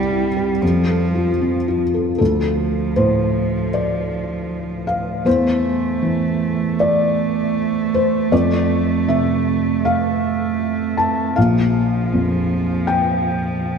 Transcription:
Already playing: C2 G3 C4 E4 G4
0.10 E4
0.37 G4
0.62 F2 F3
0.88 A4
1.15 F4
1.41 C4
1.68 F4
1.94 A4
2.18 D2 F3 A4
2.96 A2 C5
3.74 D5
4.87 F5
5.25 E2 A3 C5
6.02 E3
6.80 D5
7.94 C5
8.32 F2 D5
9.08 C3 E5
9.85 F5
10.97 A5
11.36 A#1 F3 F5
12.13 F2
12.87 G5

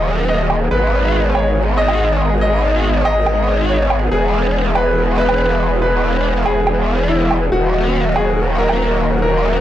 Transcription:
Already playing: D#1 D#3 F#3 A#3 G#4 D#5
0.29 D#5
0.50 low woodblock
0.71 G#1 D#3 G#3 B3 B4
1.35 C#5, low woodblock
1.77 D#5
1.88 low woodblock
2.41 D#5
3.05 D#5, low woodblock
3.26 low woodblock
3.69 C#5
3.90 low woodblock
4.12 E1 E3 G#3 G#4
4.75 B4, low woodblock
5.18 B4
5.29 low woodblock
5.82 B4
6.46 G#4, low woodblock
6.67 low woodblock
7.09 E4
7.31 low woodblock
7.52 D#1 D#3 F#3 A#3 F#4
8.16 G#4, low woodblock
8.58 A#4
8.69 low woodblock
9.22 A#4

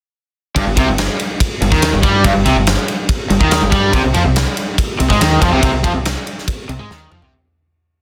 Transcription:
0.56 G1 G2, kick, ride
0.66 G1 G2
0.77 C2 C3, kick, ride
0.87 G1 G2
0.98 snare, ride
1.19 ride
1.40 kick, ride
1.61 G1 G2, ride
1.71 D#2 D#3, kick, snare
1.82 snare, ride
1.93 G1 G2
2.02 G2 G3, kick, ride
2.23 G1 G2, kick, ride
2.34 G1 G2
2.45 C2 C3, ride
2.55 G1 G2
2.67 snare, ride
2.88 ride
3.09 kick, ride
3.30 G1 G2, ride
3.40 D#2 D#3, kick
3.51 snare, ride
3.61 G1 G2
3.71 G2 G3, kick, ride
3.91 C2 C3, kick, ride
4.04 C2 C3
4.14 F2 F3, ride
4.24 C2 C3
4.36 snare, ride
4.57 ride
4.78 kick, ride
4.99 C2 C3, ride
5.09 G#2 G#3, kick, snare
5.20 D#2 D#3, snare, ride
5.41 F2 F3, kick, ride
5.51 C2 C3
5.62 C2 C3, kick, ride
5.72 C2 C3
5.83 F2 F3, kick, ride
5.94 C2 C3
6.05 snare, ride
6.27 ride
6.38 snare
6.48 kick, ride
6.69 C2 C3, ride
6.79 G#2 G#3
6.90 D#2 D#3, snare
7.12 F2 F3, mid tom
7.22 C2 C3, floor tom

